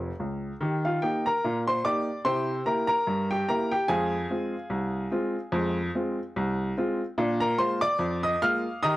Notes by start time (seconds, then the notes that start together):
0.20 C#2
0.61 D#3 G4
0.85 F4 F5
1.02 A#3 D#4 G4 G5
1.26 A#4 A#5
1.44 A#2
1.67 C5 C6
1.85 A#3 D#4 G4 D5 D6
2.25 C3 E4 C5 G5 C6
2.66 A#3 E4 G4 A#4 A#5
2.87 A#4 A#5
3.07 G2
3.31 G4 G5
3.49 A#3 E4 G4 A#4 A#5
3.71 G4 G5
3.88 F2 G#3 G#4 F5 G#5
4.30 G#3 C4 F4
4.70 C2
5.11 G#3 C4 F4
5.52 F2 G#3
5.95 G#3 C4 F4
6.36 C2
6.77 G#3 C4 F4
7.18 A#2 D4
7.40 A#4 A#5
7.58 G#3 A#3 F4 C5 C6
7.81 D5 D6
7.99 F2
8.23 D#5 D#6
8.42 G#3 A#3 F4 F5 F6
8.83 D#3 G4 D#5 A#5 D#6